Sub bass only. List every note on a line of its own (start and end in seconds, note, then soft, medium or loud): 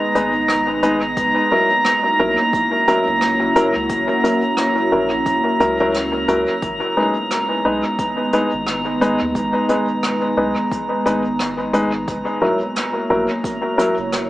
0.15 1.14 G#1 medium
1.17 1.35 F#1 medium
2.19 2.37 A#1 medium
3.08 3.72 F#1 loud
3.76 3.88 C#2 loud
3.90 4.07 F#1 medium
4.92 5.28 A#1 medium
5.26 5.44 E1 medium
5.60 6.26 C#2 medium
6.28 6.46 C#2 medium
6.62 6.80 G#1 medium
7.65 7.83 B1 medium
8.53 9.18 G#1 loud
9.21 9.34 D#2 loud
9.35 9.53 G#1 loud
10.37 10.55 B1 medium
11.05 12.05 G#1 loud
12.08 12.26 F#1 medium
13.10 13.28 A#1 medium
13.98 14.30 F#1 loud